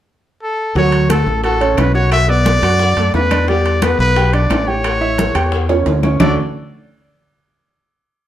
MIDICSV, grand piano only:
0, 0, Header, 1, 2, 480
1, 0, Start_track
1, 0, Key_signature, 2, "major"
1, 0, Tempo, 340136
1, 1068, Time_signature, 4, 2, 24, 8
1, 11682, End_track
2, 0, Start_track
2, 0, Title_t, "Grand piano"
2, 0, Program_c, 0, 0
2, 1079, Note_on_c, 0, 66, 75
2, 1080, Note_on_c, 0, 54, 81
2, 1468, Note_off_c, 0, 54, 0
2, 1468, Note_off_c, 0, 66, 0
2, 1543, Note_on_c, 0, 57, 65
2, 1552, Note_on_c, 0, 69, 62
2, 1939, Note_off_c, 0, 57, 0
2, 1944, Note_off_c, 0, 69, 0
2, 2026, Note_on_c, 0, 66, 67
2, 2033, Note_on_c, 0, 78, 66
2, 2224, Note_off_c, 0, 66, 0
2, 2228, Note_off_c, 0, 78, 0
2, 2269, Note_on_c, 0, 61, 64
2, 2273, Note_on_c, 0, 73, 65
2, 2662, Note_off_c, 0, 61, 0
2, 2664, Note_off_c, 0, 73, 0
2, 2745, Note_on_c, 0, 66, 75
2, 2745, Note_on_c, 0, 78, 66
2, 3140, Note_off_c, 0, 66, 0
2, 3140, Note_off_c, 0, 78, 0
2, 3221, Note_on_c, 0, 59, 73
2, 3227, Note_on_c, 0, 71, 70
2, 3618, Note_off_c, 0, 59, 0
2, 3621, Note_off_c, 0, 71, 0
2, 3710, Note_on_c, 0, 66, 77
2, 3716, Note_on_c, 0, 78, 77
2, 4103, Note_off_c, 0, 66, 0
2, 4107, Note_off_c, 0, 78, 0
2, 4199, Note_on_c, 0, 57, 61
2, 4204, Note_on_c, 0, 69, 69
2, 4589, Note_off_c, 0, 57, 0
2, 4592, Note_off_c, 0, 69, 0
2, 4675, Note_on_c, 0, 62, 69
2, 4677, Note_on_c, 0, 74, 68
2, 4870, Note_off_c, 0, 62, 0
2, 4871, Note_off_c, 0, 74, 0
2, 4923, Note_on_c, 0, 55, 82
2, 4930, Note_on_c, 0, 67, 73
2, 5312, Note_off_c, 0, 55, 0
2, 5316, Note_off_c, 0, 67, 0
2, 5394, Note_on_c, 0, 59, 71
2, 5397, Note_on_c, 0, 71, 59
2, 5787, Note_off_c, 0, 59, 0
2, 5789, Note_off_c, 0, 71, 0
2, 5879, Note_on_c, 0, 67, 74
2, 5883, Note_on_c, 0, 79, 70
2, 6073, Note_off_c, 0, 67, 0
2, 6075, Note_off_c, 0, 79, 0
2, 6115, Note_on_c, 0, 62, 63
2, 6125, Note_on_c, 0, 74, 61
2, 6508, Note_off_c, 0, 62, 0
2, 6514, Note_off_c, 0, 74, 0
2, 6593, Note_on_c, 0, 67, 66
2, 6597, Note_on_c, 0, 79, 66
2, 6987, Note_off_c, 0, 67, 0
2, 6989, Note_off_c, 0, 79, 0
2, 7069, Note_on_c, 0, 64, 68
2, 7075, Note_on_c, 0, 76, 75
2, 7464, Note_off_c, 0, 64, 0
2, 7468, Note_off_c, 0, 76, 0
2, 7548, Note_on_c, 0, 67, 74
2, 7553, Note_on_c, 0, 79, 78
2, 7943, Note_off_c, 0, 67, 0
2, 7947, Note_off_c, 0, 79, 0
2, 8034, Note_on_c, 0, 61, 60
2, 8036, Note_on_c, 0, 73, 64
2, 8427, Note_off_c, 0, 61, 0
2, 8428, Note_off_c, 0, 73, 0
2, 8517, Note_on_c, 0, 61, 62
2, 8520, Note_on_c, 0, 73, 60
2, 8712, Note_off_c, 0, 61, 0
2, 8713, Note_off_c, 0, 73, 0
2, 8750, Note_on_c, 0, 50, 92
2, 8750, Note_on_c, 0, 61, 82
2, 8753, Note_on_c, 0, 57, 84
2, 8753, Note_on_c, 0, 62, 81
2, 8759, Note_on_c, 0, 66, 90
2, 8761, Note_on_c, 0, 69, 96
2, 8974, Note_off_c, 0, 50, 0
2, 8975, Note_off_c, 0, 61, 0
2, 8976, Note_off_c, 0, 57, 0
2, 8976, Note_off_c, 0, 62, 0
2, 8979, Note_off_c, 0, 66, 0
2, 8980, Note_off_c, 0, 69, 0
2, 11682, End_track
0, 0, End_of_file